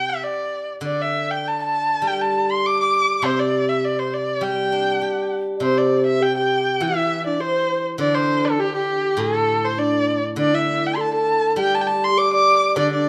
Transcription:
Already playing: guzheng C3, erhu G5
0.09 erhu E5
0.24 erhu D5
0.81 guzheng D3
0.86 erhu D5
1.02 erhu E5
1.31 erhu G5
1.48 erhu A5
1.63 erhu A5
2.02 guzheng G3
2.07 erhu G5
2.21 erhu A5
2.51 erhu C6
2.66 erhu D6
2.80 erhu D6
3.22 guzheng C3, erhu C5
3.39 erhu D5
3.69 erhu E5
3.85 erhu D5
3.99 erhu C5
4.14 erhu D5
4.41 guzheng G3, erhu G5
4.72 guzheng D4
5.01 guzheng G4
5.56 xiao D5
5.60 guzheng C3, erhu C5, xiao C5
5.78 erhu D5
6.07 erhu E5
6.21 xiao G4, erhu G5
6.37 xiao G4, erhu G5
6.80 guzheng E3, xiao E4, erhu E5
6.89 xiao G4
6.96 xiao E4
7.23 xiao D4 E4, erhu D5
7.41 xiao C5, erhu C5
7.98 guzheng D3, xiao D4, erhu D5
8.15 erhu C5
8.45 erhu A4
8.59 xiao G4, erhu G4
8.74 xiao G4, erhu G4
9.17 guzheng A2, xiao A4, erhu A4
9.65 erhu C5
9.77 xiao D4, erhu D5
10.36 guzheng D3, xiao D4, erhu D5
10.54 xiao E4, erhu E5
10.86 erhu G5
10.96 xiao A4, erhu C6
11.01 erhu A5
11.13 xiao A4, erhu A5
11.56 guzheng G3, xiao G4, erhu G5
11.75 erhu A5
11.81 erhu G5
11.87 erhu A5
12.04 erhu C6
12.18 xiao D5, erhu D6
12.33 xiao D5, erhu D6
12.76 guzheng D3, xiao D4, erhu D5
12.93 xiao D4, erhu D5

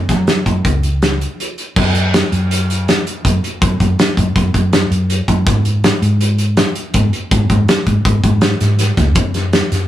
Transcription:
Already playing: fingered electric bass F#2
0.09 fingered electric bass F#3, kick, snare, closed hi-hat
0.27 snare, closed hi-hat
0.46 fingered electric bass F#2, kick, closed hi-hat
0.65 fingered electric bass C#2, kick, closed hi-hat
0.83 closed hi-hat
1.02 snare, closed hi-hat
1.21 closed hi-hat
1.40 closed hi-hat
1.58 closed hi-hat
1.76 fingered electric bass F#2, kick, crash
1.95 closed hi-hat
2.14 snare, closed hi-hat
2.32 fingered electric bass F#2, closed hi-hat
2.51 closed hi-hat
2.70 closed hi-hat
2.88 snare, closed hi-hat
3.07 closed hi-hat
3.25 fingered electric bass F#2, kick, closed hi-hat
3.44 closed hi-hat
3.61 fingered electric bass F#2, kick, closed hi-hat
3.80 fingered electric bass F#2, kick, closed hi-hat
3.99 snare, closed hi-hat
4.17 fingered electric bass F#2, kick, closed hi-hat
4.36 fingered electric bass F#2, kick, closed hi-hat
4.54 fingered electric bass F#2, kick, closed hi-hat
4.73 snare, closed hi-hat
4.90 fingered electric bass F#2, closed hi-hat
5.10 closed hi-hat
5.28 fingered electric bass F#2, kick, closed hi-hat
5.47 fingered electric bass G#2, kick, closed hi-hat
5.65 closed hi-hat
5.84 snare, closed hi-hat
6.02 fingered electric bass G#2, closed hi-hat
6.21 closed hi-hat
6.38 closed hi-hat
6.57 snare, closed hi-hat
6.75 closed hi-hat
6.94 fingered electric bass G#2, kick, closed hi-hat
7.13 closed hi-hat
7.31 fingered electric bass G#2, kick, closed hi-hat
7.50 fingered electric bass G#2, kick, closed hi-hat
7.68 snare, closed hi-hat
7.87 fingered electric bass G#2, kick, closed hi-hat
8.05 fingered electric bass G#2, kick, closed hi-hat
8.24 fingered electric bass G#2, kick, closed hi-hat
8.41 snare, closed hi-hat
8.61 fingered electric bass G#2, snare, closed hi-hat
8.79 snare, closed hi-hat
8.97 fingered electric bass C#2, kick, snare, closed hi-hat
9.15 fingered electric bass F#2, kick, closed hi-hat
9.34 snare, closed hi-hat
9.53 snare, closed hi-hat
9.72 fingered electric bass F#2, snare, closed hi-hat

